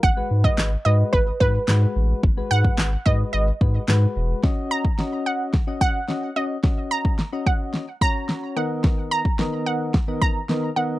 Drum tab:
CP |----x-------x---|----x-------x---|----------------|----------------|
SD |----o-------o---|----o-------o---|o---o---o---o---|o---o---o---o---|
BD |o--o----o-o-----|o--o--o---o-----|o--o----o-o-----|o--o--o---o-----|

CP |----------------|
SD |o---o---o---o---|
BD |o--o----o-o-----|